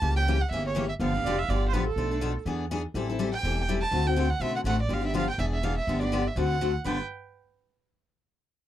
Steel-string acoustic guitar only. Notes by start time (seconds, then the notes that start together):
0.01 C#3 E3 A#3 C#4 G4
0.16 A#3 C#4 G4
0.28 C#3 E3 A#3 C#4 G4
0.53 C#3 E3 A#3 C#4 G4
0.75 C#3 E3 A#3 C#4 G4
1.00 D3 F3 B3 D4 G4
1.15 B3 D4 G4
1.26 D3 F3 B3 D4 G4
1.50 D3 F3 B3 D4 G4
1.73 D3 F3 B3 D4 G4
1.98 B2 F3 A3 D4 A4
2.11 A3 D4 A4
2.21 B2 F3 A3 D4 A4
2.46 E3 B3 D4 G#4
2.71 E3 B3 D4 G#4
2.95 E3 G3 C4 E4 A4
3.09 C4 E4 A4
3.19 E3 G3 C4 E4 A4
3.44 E3 G3 C4 E4 A4
3.69 E3 G3 C4 E4 A4
3.92 D3 A3 C4 F#4 A4
4.05 C4 F#4 A4
4.16 D3 A3 C4 F#4 A4
4.41 D3 A3 C4 F#4 A4
4.65 D3 A3 C4 F#4 A4
4.89 D3 F3 B3 D4 G4
5.01 B3 D4 G4
5.14 D3 F3 B3 D4 G4
5.39 E3 B3 D4 G#4
5.63 E3 B3 D4 G#4
5.88 D3 F3 B3 D4 G4
6.01 B3 D4 G4
6.12 D3 F3 B3 D4 G4
6.36 D3 A3 C4 F#4 A4
6.61 D3 A3 C4 F#4 A4
6.84 G2 D3 F3 B3 D4 G4